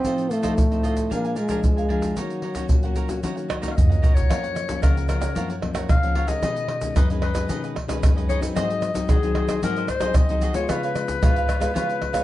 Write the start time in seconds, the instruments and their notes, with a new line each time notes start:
Already playing: trombone C4
0.04 nylon-string guitar A2 F3 C4 D#4, cavaquinho F4 A4 C5 D#5, pandeiro, shaker, surdo
0.18 pandeiro, shaker
0.31 trombone A3, cavaquinho F4 A4 C5 D#5, pandeiro, shaker
0.43 nylon-string guitar F3 C4 D#4, cavaquinho F4 A4 C5 D#5, pandeiro, shaker, surdo
0.56 nylon-string guitar A2, pandeiro, shaker, surdo
0.71 nylon-string guitar F3 C4 D#4, cavaquinho A4 C5 D#5, pandeiro, shaker
0.83 cavaquinho F4 A4 C5 D#5, pandeiro, shaker
0.96 cavaquinho A4 C5 D#5, pandeiro, shaker, surdo
1.10 nylon-string guitar A#2 F3 G#3 D4, trombone A#3, cavaquinho D4 A#4 F5 G#5, pandeiro, shaker, surdo
1.24 cavaquinho A#4 F5 G#5, pandeiro, shaker
1.36 trombone G#3, cavaquinho D4 A#4 F5 G#5, pandeiro, shaker
1.49 nylon-string guitar F3 G#3 D4, cavaquinho D4 A#4 F5 G#5, pandeiro, shaker, surdo
1.64 nylon-string guitar F2, pandeiro, shaker, surdo
1.77 cavaquinho A#4 F5 G#5, pandeiro, shaker
1.89 nylon-string guitar F3 G#3 D4, cavaquinho D4 A#4 F5 G#5, pandeiro
2.02 pandeiro, shaker, surdo
2.17 nylon-string guitar D#3 A#3 C#4 F#4, trombone F#3, cavaquinho D#4 A#4 C#5 F#5, pandeiro, shaker, surdo
2.30 pandeiro, shaker
2.42 cavaquinho D#4 A#4 C#5 F#5, pandeiro
2.55 nylon-string guitar A#3 C#4 F#4, cavaquinho D#4 A#4 C#5 F#5, pandeiro, shaker, surdo
2.69 nylon-string guitar A#2, pandeiro, shaker, surdo
2.83 nylon-string guitar A#3 C#4 F#4, cavaquinho A#4 C#5 F#5, pandeiro, shaker
2.96 cavaquinho D#4 A#4 C#5 F#5, pandeiro, shaker
3.08 nylon-string guitar A#3 C#4 F#4, cavaquinho A#4 C#5 F#5, pandeiro, shaker, surdo
3.23 nylon-string guitar D#3 A#3 C#4 F#4, cavaquinho D#4 A#4 C#5 F#5, pandeiro, shaker, surdo
3.36 cavaquinho A#4 C#5 F#5, pandeiro, shaker
3.48 cavaquinho D#4 A#4 C#5 F#5, pandeiro, tamborim, shaker, surdo
3.62 nylon-string guitar A#3 C#4 F#4, cavaquinho D#4 A#4 C#5 F#5, pandeiro, shaker, surdo
3.68 clarinet F5, tamborim
3.77 nylon-string guitar A#2, clarinet D#5, surdo, pandeiro, shaker
3.87 cavaquinho C#5 F#5, surdo
3.92 cavaquinho A#4, pandeiro, shaker
4.02 nylon-string guitar A#3 C#4 F#4, cavaquinho D#4 A#4 C#5 F#5, pandeiro, shaker, surdo
4.13 clarinet C#5, pandeiro, shaker, surdo
4.17 surdo
4.21 surdo
4.29 nylon-string guitar F#2 F3 A#3 C#4, cavaquinho F4 A#4 C#5 F#5, pandeiro, tamborim, shaker, surdo
4.43 cavaquinho A#4 C#5 F#5, pandeiro, shaker
4.55 muted cavaquinho stroke, pandeiro, tamborim, shaker
4.69 nylon-string guitar F3 A#3 C#4, pandeiro, shaker, surdo
4.82 nylon-string guitar C#3, cavaquinho F4 A#4 C#5 F#5, clarinet A#4, pandeiro, tamborim, shaker, surdo
4.97 cavaquinho A#4 C#5 F#5, pandeiro, shaker
5.08 nylon-string guitar F3 A#3 C#4, cavaquinho F4 A#4 C#5 F#5, clarinet A#4, pandeiro, tamborim, shaker
5.21 cavaquinho A#4 C#5 F#5, pandeiro, tamborim, shaker, surdo
5.35 nylon-string guitar F#2 F3 A#3 C#4, cavaquinho F4 A#4 C#5 F#5, pandeiro, shaker, surdo
5.49 cavaquinho A#4 C#5 F#5, pandeiro, shaker
5.62 nylon-string guitar F3 A#3 C#4, muted cavaquinho stroke, pandeiro, tamborim, surdo
5.74 cavaquinho A#4 C#5 F#5, pandeiro, tamborim, shaker, surdo
5.89 nylon-string guitar C#3, clarinet F5, pandeiro, tamborim, shaker, surdo
6.03 nylon-string guitar F3 A#3 C#4, cavaquinho A#4 C#5 F#5, pandeiro, shaker
6.15 cavaquinho F4 A#4 C#5 F#5, pandeiro
6.28 nylon-string guitar D#3 G#3 C#4, cavaquinho A#4 C#5 F#5, clarinet D#5, pandeiro, shaker, surdo
6.42 nylon-string guitar B2, cavaquinho D#4 G#4 B4 D#5, pandeiro, tamborim, shaker, surdo
6.56 cavaquinho G#4 B4 D#5, pandeiro, shaker
6.68 muted cavaquinho stroke, pandeiro, tamborim
6.81 nylon-string guitar D#3 G#3 C#4, pandeiro, shaker, surdo
6.96 nylon-string guitar F#2, cavaquinho D#4 G#4 B4 D#5, clarinet B4, pandeiro, tamborim, shaker, surdo
7.10 nylon-string guitar D#3 G#3 C#4, cavaquinho G#4 B4 D#5, pandeiro, shaker
7.22 cavaquinho D#4 G#4 B4 D#5, clarinet B4, pandeiro, tamborim
7.35 nylon-string guitar D#3 G#3 C#4, cavaquinho G#4 B4 D#5, pandeiro, tamborim, shaker, surdo
7.49 nylon-string guitar B2 D#3 G#3 C#4, cavaquinho D#4 G#4 B4 D#5, pandeiro, shaker, surdo
7.64 cavaquinho G#4 B4 D#5, pandeiro, shaker
7.76 muted cavaquinho stroke, pandeiro, tamborim, surdo
7.88 nylon-string guitar D#3 G#3 C#4, cavaquinho G#4 B4 D#5, pandeiro, tamborim, shaker, surdo
8.01 nylon-string guitar F#2, pandeiro, tamborim, shaker, surdo
8.15 nylon-string guitar D#3 G#3 C#4, cavaquinho G#4 B4 D#5, pandeiro, shaker
8.29 cavaquinho D#4 G#4 B4 D#5, clarinet C#5, pandeiro, shaker
8.40 nylon-string guitar F#3 C4 D#4, cavaquinho G#4 B4 D#5, pandeiro, shaker, surdo
8.56 nylon-string guitar G#2, cavaquinho F#4 G#4 C5 D#5, clarinet D#5, pandeiro, tamborim, shaker, surdo
8.70 cavaquinho G#4 D#5, pandeiro, shaker
8.82 muted cavaquinho stroke, pandeiro, tamborim, shaker
8.94 nylon-string guitar F#3 C4 D#4, pandeiro, shaker, surdo
9.08 nylon-string guitar D#3, cavaquinho F#4 G#4 C5 D#5, clarinet G#4, pandeiro, tamborim, shaker, surdo
9.23 nylon-string guitar F#3 C4 D#4, cavaquinho G#4 C5 D#5, pandeiro, shaker
9.35 cavaquinho F#4 G#4 C5 D#5, pandeiro, tamborim
9.49 cavaquinho G#4 C5 D#5, pandeiro, tamborim, shaker, surdo
9.62 nylon-string guitar G#2 F#3 C4 D#4, cavaquinho F#4 G#4 C5 D#5, clarinet A#4, pandeiro, shaker, surdo
9.76 cavaquinho G#4 C5 D#5, pandeiro, shaker
9.88 clarinet C5, muted cavaquinho stroke, pandeiro, tamborim, shaker, surdo
10.01 nylon-string guitar F#3 C4 D#4, cavaquinho G#4 C5 D#5, pandeiro, tamborim, shaker, surdo
10.14 nylon-string guitar D#3, clarinet D#5, pandeiro, tamborim, shaker, surdo
10.29 nylon-string guitar F#3 C4 D#4, cavaquinho G#4 C5 D#5, pandeiro, shaker
10.41 cavaquinho F#4 G#4 C5 D#5, pandeiro, shaker
10.54 nylon-string guitar G#3 B3 F4, cavaquinho G#4 C5 D#5, clarinet C#5, pandeiro, shaker, surdo
10.69 nylon-string guitar C#3, cavaquinho F4 B4 C#5 F5, clarinet B4, pandeiro, tamborim, shaker, surdo
10.83 cavaquinho B4 C#5 F5, pandeiro, shaker
10.95 nylon-string guitar G#3 B3 F4, muted cavaquinho stroke, pandeiro, tamborim, shaker
11.08 pandeiro, shaker, surdo
11.22 nylon-string guitar G#2 G#3 B3 F4, cavaquinho F4 B4 C#5 F5, pandeiro, tamborim, shaker, surdo
11.36 cavaquinho B4 C#5 F5, pandeiro, shaker
11.48 cavaquinho F4 B4 C#5 F5, pandeiro, tamborim, shaker
11.60 nylon-string guitar G#3 B3 F4, cavaquinho B4 C#5 F5, pandeiro, tamborim, shaker, surdo
11.74 nylon-string guitar C#3 G#3 B3 F4, cavaquinho F4 B4 C#5 F5, clarinet B4, pandeiro, shaker, surdo
11.88 cavaquinho B4 C#5 F5, pandeiro, shaker
12.01 muted cavaquinho stroke, pandeiro, tamborim, surdo
12.13 nylon-string guitar G#3 B3 F4, cavaquinho B4 C#5 F5, pandeiro, tamborim, shaker, surdo